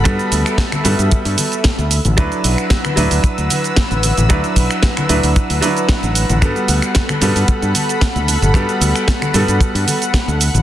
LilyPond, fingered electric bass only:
\new Staff \with { instrumentName = "Fingered electric bass" } { \clef bass \time 4/4 \key g \lydian \tempo 4 = 113 g,16 r16 d,16 r8. g,16 g,16 r16 g,16 r8. d,8 a,,16 | r8 b,,16 r8. d,16 d,16 r16 d,16 r8. a,,8 a,,16 | r8 b,,16 r8. d,16 d,16 r16 d,16 r8. a,,8 a,,16 | g,16 r16 d,16 r8. g,16 g,16 r16 g,16 r8. d,8 g,,16 |
g,16 r16 d,16 r8. g,16 g,16 r16 g,16 r8. d,8 a,,16 | }